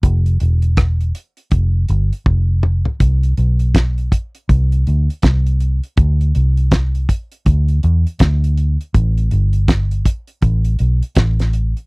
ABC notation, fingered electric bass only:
X:1
M:4/4
L:1/16
Q:"Swing 16ths" 1/4=81
K:C
V:1 name="Fingered electric bass" clef=bass
F,,,2 E,,,4 z2 F,,,2 G,,, z F,,,3 z | C,,2 B,,,4 z2 C,,2 D,, z C,,3 z | D,,2 C,,4 z2 D,,2 E,, z D,,3 z | A,,,2 G,,,4 z2 A,,,2 B,,, z A,,,3 z |]